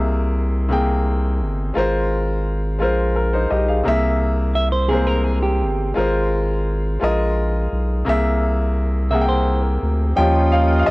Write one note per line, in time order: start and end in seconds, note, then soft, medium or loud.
0.00 1.42 C2 medium
0.00 0.55 C3 medium
0.00 0.55 A#3 medium
0.00 0.56 G#4 medium
0.00 0.57 E5 medium
0.69 1.60 C3 medium
0.69 1.61 A#3 medium
0.69 1.61 G#4 medium
0.69 1.62 G5 medium
1.41 1.72 G1 medium
1.74 2.83 G#1 medium
1.74 2.65 G#3 medium
1.74 2.66 F4 medium
1.74 2.67 A#4 medium
1.78 2.67 C5 medium
2.79 3.47 A#1 loud
2.79 3.70 G#3 medium
2.79 3.15 F4 medium
2.79 3.14 A#4 medium
2.83 3.16 C5 medium
3.16 3.32 A#4 medium
3.33 3.50 D#4 soft
3.33 3.49 C5 medium
3.50 3.82 B1 medium
3.50 3.67 G4 medium
3.50 3.67 D#5 medium
3.68 3.85 G#4 soft
3.68 4.01 F5 medium
3.83 5.64 C2 medium
3.83 4.75 C3 medium
3.83 4.76 A#3 medium
3.83 4.77 G#4 medium
3.88 4.78 E5 medium
4.55 4.72 E5 medium
4.72 4.89 C5 medium
4.89 5.81 C3 medium
4.89 5.82 G#3 medium
4.89 5.81 A#3 medium
4.89 5.07 G#4 medium
4.93 5.83 C5 medium
5.07 5.24 A#4 medium
5.24 5.41 G#4 medium
5.42 5.93 G4 medium
5.62 5.93 G1 medium
5.94 6.98 G#1 loud
5.94 6.86 G#3 medium
5.94 6.87 F4 medium
5.94 6.87 A#4 medium
5.98 6.88 C5 medium
6.99 7.68 A#1 medium
6.99 7.91 G#3 medium
6.99 7.92 F4 medium
6.99 7.93 A#4 medium
7.03 7.93 D#5 medium
7.72 8.03 B1 medium
8.05 9.78 C2 medium
8.05 8.96 C3 medium
8.05 8.97 A#3 medium
8.05 8.98 G#4 medium
8.09 8.99 E5 medium
9.10 10.02 C3 medium
9.10 10.03 A#3 medium
9.10 10.03 G#4 medium
9.10 9.28 E5 medium
9.14 9.19 F#5 medium
9.21 10.07 G5 medium
9.29 9.63 C5 medium
9.63 10.13 A#4 medium
9.83 10.14 D2 medium
10.16 10.84 D#2 loud
10.16 10.91 F3 medium
10.16 10.91 G3 soft
10.16 10.91 A#3 medium
10.16 10.91 C#4 medium
10.16 10.91 F4 medium
10.16 10.91 G4 medium
10.16 10.91 D#5 medium
10.16 10.49 G5 loud
10.52 10.78 F5 medium
10.79 10.86 F5 medium
10.86 10.91 D#5 medium